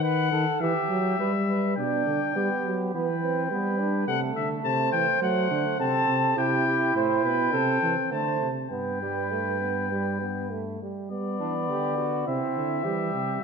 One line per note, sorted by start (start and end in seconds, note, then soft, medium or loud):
0.00 0.32 D#3 loud
0.00 0.31 B4 medium
0.00 0.62 F#5 medium
0.31 0.45 D#3 medium
0.31 0.60 A4 medium
0.60 0.73 E3 loud
0.60 1.18 G4 medium
0.60 1.76 E5 medium
0.89 1.18 F#3 medium
1.19 1.77 G3 medium
1.19 1.33 B4 medium
1.50 1.78 B4 medium
1.77 2.05 B2 medium
1.77 2.32 D4 medium
1.77 2.32 D5 medium
1.77 2.89 G5 medium
2.07 2.20 D3 medium
2.36 2.49 G3 medium
2.36 2.92 B3 medium
2.36 2.93 G4 medium
2.65 2.93 F#3 medium
2.94 3.50 E3 medium
2.94 3.07 B3 medium
2.94 3.50 B4 medium
2.94 4.06 G5 medium
3.23 3.51 C4 medium
3.51 4.07 G3 medium
3.51 3.81 B3 medium
3.51 4.09 B4 medium
3.80 4.08 D4 medium
4.07 4.35 C3 medium
4.07 5.20 A3 medium
4.07 4.64 A4 medium
4.07 4.21 F#5 medium
4.36 4.63 D3 medium
4.36 4.49 E5 medium
4.64 4.92 C3 medium
4.64 5.78 C5 medium
4.64 4.92 A5 medium
4.92 5.06 E3 medium
4.92 5.21 G5 medium
5.21 5.50 F#3 medium
5.21 5.79 A3 medium
5.21 5.79 F#5 medium
5.51 5.64 D3 medium
5.80 6.07 C3 medium
5.80 6.36 C4 medium
5.80 6.39 A4 medium
5.80 6.36 A5 medium
6.08 6.36 C3 medium
6.37 6.94 C3 medium
6.37 7.54 E4 medium
6.37 6.66 G4 medium
6.37 6.95 G5 medium
6.67 6.95 G4 medium
6.95 7.25 A2 medium
6.95 7.24 C5 medium
6.95 8.10 G5 medium
7.24 7.53 B2 medium
7.24 7.52 B4 medium
7.53 7.82 C3 medium
7.53 8.14 C4 medium
7.53 7.94 A4 medium
7.82 7.95 E3 medium
8.11 8.40 D3 medium
8.11 8.51 A3 medium
8.11 8.49 C5 medium
8.11 8.50 A5 medium
8.41 8.70 C3 medium
8.71 10.77 G2 medium
8.71 8.99 B3 medium
8.71 10.77 B4 medium
8.71 10.76 G5 medium
9.02 9.33 G3 medium
9.31 9.61 A3 medium
9.61 9.90 B3 medium
9.92 10.21 G3 medium
10.21 10.53 B3 medium
10.52 10.81 A3 medium
10.82 11.11 G3 medium
11.10 11.42 G3 medium
11.10 12.24 B3 medium
11.10 12.23 D5 medium
11.40 11.71 E3 medium
11.40 11.53 D4 medium
11.70 12.27 D3 medium
11.70 11.97 G4 medium
11.98 12.29 F#4 medium
12.27 12.40 C3 medium
12.27 12.84 C4 medium
12.27 12.85 E4 medium
12.27 13.44 E5 medium
12.56 12.86 D3 medium
12.84 13.13 E3 medium
12.84 13.41 G3 medium
12.84 13.41 G4 medium
13.13 13.41 C3 medium